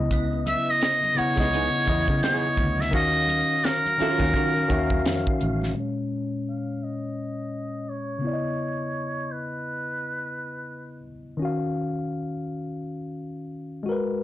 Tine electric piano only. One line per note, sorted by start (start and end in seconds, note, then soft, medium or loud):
0.00 0.95 C#3 medium
0.00 0.95 B3 medium
0.00 0.96 E4 medium
0.00 0.97 D#5 medium
1.15 1.33 C#3 medium
1.15 1.34 B3 medium
1.15 1.35 E4 medium
1.19 1.35 F#5 medium
1.36 1.79 C#3 medium
1.36 1.80 B3 medium
1.36 1.81 E4 medium
1.36 1.81 D#5 medium
1.85 2.78 C#3 medium
1.85 2.79 B3 medium
1.85 2.80 E4 medium
1.90 2.80 D#5 medium
2.91 3.84 D#3 medium
2.91 3.85 C#4 medium
2.91 3.86 F#4 medium
2.96 3.86 F5 loud
3.98 4.16 D#3 medium
3.98 4.17 C#4 medium
3.98 4.18 F#4 medium
4.02 4.18 F5 medium
4.18 4.61 D#3 medium
4.18 4.62 C#4 medium
4.18 4.63 F#4 medium
4.22 4.63 F5 medium
4.68 5.61 D#3 medium
4.68 5.61 C#4 medium
4.68 5.62 F#4 medium
4.72 4.79 E5 medium
4.79 5.66 F5 loud
5.72 8.17 A#2 medium
5.72 8.18 G#3 medium
5.77 8.19 C#4 medium
5.77 8.21 C#5 medium
8.19 10.99 C#3 soft
8.19 11.00 B3 soft
8.24 11.02 E4 soft
8.24 8.33 D5 soft
8.33 11.06 D#5 medium
11.37 13.82 D#3 medium
11.37 13.83 C#4 medium
11.42 13.84 F#4 medium
11.42 13.86 F5 medium
13.83 14.23 G#3 medium
13.83 14.23 F#4 medium
13.89 14.23 A#4 medium
13.89 14.23 B4 medium